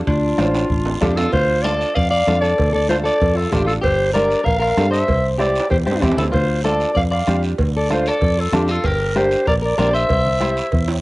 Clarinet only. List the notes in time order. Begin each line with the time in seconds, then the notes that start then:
0.08 F4
1.01 G4
1.16 A4
1.32 C5
1.62 D5
1.95 F5
2.10 F5
2.41 D5
2.74 D5
2.89 C5
3.05 D5
3.36 A4
3.52 G4
3.67 A4
3.83 C5
4.14 D5
4.45 F5
4.61 F5
4.92 E5
5.39 D5
5.70 C5
5.85 C5
6.01 G4
6.17 A4
6.33 C5
6.64 D5
6.97 F5
7.12 F5
7.77 D5
7.93 C5
8.08 D5
8.40 A4
8.55 G4
8.71 A4
8.86 A#4
9.17 C5
9.48 D5
9.65 D5
9.79 D5
9.95 E5